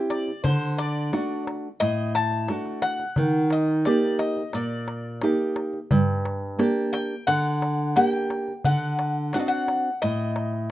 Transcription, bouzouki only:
0.10 0.43 D5 medium
0.44 0.76 C5 medium
0.78 1.43 D5 medium
1.80 2.15 D#5 loud
2.15 2.82 A5 loud
2.82 3.47 F#5 medium
3.52 3.85 D#5 medium
3.86 4.19 D5 medium
4.19 4.51 D#5 medium
4.55 5.53 D5 medium
6.93 7.25 G5 medium
7.27 7.92 F#5 loud
7.96 8.07 F#5 medium
8.07 8.65 G5 medium
8.65 9.33 F#5 medium
9.34 9.39 F#5 medium
9.39 9.47 D#5 medium
9.48 10.01 F#5 medium
10.02 10.70 D#5 loud

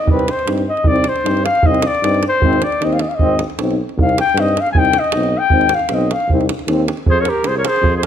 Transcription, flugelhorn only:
0.00 0.10 D#5 medium
0.11 0.32 B4 medium
0.31 0.49 C5 medium
0.69 0.89 D#5 medium
0.87 1.10 D5 medium
1.08 1.46 C5 medium
1.45 1.68 F5 medium
1.66 1.88 D#5 medium
1.87 2.25 D5 medium
2.28 2.65 C5 medium
2.64 2.85 D5 medium
2.84 2.94 D#5 medium
2.93 3.02 F5 medium
3.01 3.10 D#5 medium
3.09 3.17 F5 medium
3.15 3.41 D#5 medium
4.01 4.18 F5 medium
4.20 4.41 G5 loud
4.40 4.62 D#5 medium
4.61 4.71 F5 medium
4.72 4.80 G#5 medium
4.78 5.01 G5 loud
4.99 5.40 D#5 medium
5.38 5.76 G5 loud
5.74 5.95 F5 medium
5.94 6.14 D#5 medium
6.12 6.30 F5 medium
7.10 7.21 C5 loud
7.20 7.30 C#5 medium
7.29 7.49 A#4 medium
7.47 7.56 C5 medium
7.57 7.67 C#5 medium
7.66 7.94 C5 loud
7.97 8.04 C5 medium

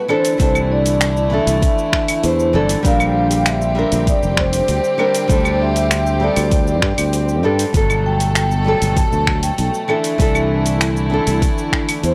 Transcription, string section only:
0.09 7.70 D3 medium
0.09 2.82 A3 medium
0.09 2.82 E4 medium
2.84 7.70 C4 medium
2.84 7.70 G4 medium
7.74 9.87 B2 medium
7.74 12.14 A3 medium
7.74 9.87 A4 medium
9.89 12.14 D3 medium
9.89 12.14 E4 medium

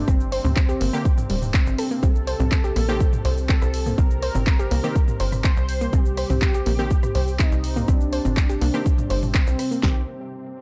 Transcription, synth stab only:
0.93 1.05 D3 loud
0.93 1.05 A#3 medium
0.93 1.05 G4 loud
2.89 3.00 D#3 medium
2.89 3.00 C4 medium
2.89 3.00 G4 loud
4.84 4.95 D#3 loud
4.84 4.95 C4 medium
4.84 4.95 G4 loud
6.79 6.90 D#3 medium
6.79 6.90 C4 medium
6.79 6.90 G4 loud
8.74 8.85 D#3 medium
8.74 8.85 C4 medium
8.74 8.85 G4 loud
9.83 10.02 D#3 medium
9.83 10.02 C4 medium
9.83 10.02 G4 loud

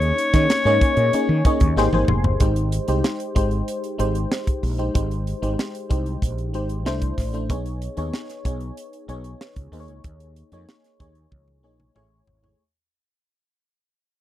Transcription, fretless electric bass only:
0.00 0.11 D#2 loud
0.34 0.46 D#3 medium
0.65 0.78 G#2 medium
0.97 1.09 A#2 medium
1.13 muted fretless electric bass stroke medium
1.29 1.41 D#3 loud
1.61 1.73 D#2 loud
1.76 1.89 G#1 medium
1.92 2.05 G#1 medium
2.08 2.24 F1 loud
2.24 2.37 G1 medium
2.40 2.78 G#1 loud
2.88 3.01 C2 medium
3.36 3.61 G#1 medium
4.00 4.24 G#1 loud
4.63 4.88 A#1 medium
4.95 5.32 G#1 loud
5.42 5.55 G#1 medium
5.91 6.15 C2 medium
6.22 6.54 A#1 loud
6.54 6.86 G#1 medium
6.86 7.11 C2 medium
7.18 7.50 A1 medium
7.50 7.87 B1 loud
7.97 8.10 D#2 medium
8.45 8.70 B1 medium
9.08 9.34 B1 loud
9.56 9.69 C#2 medium
9.72 9.88 D#2 loud
9.88 10.01 C#2 medium
10.04 10.42 D#2 medium
10.52 10.64 F2 medium
11.00 11.25 D#2 medium
11.32 11.64 C#2 loud
11.64 11.89 A#1 medium
11.96 12.21 A1 medium
12.27 12.52 G#1 medium

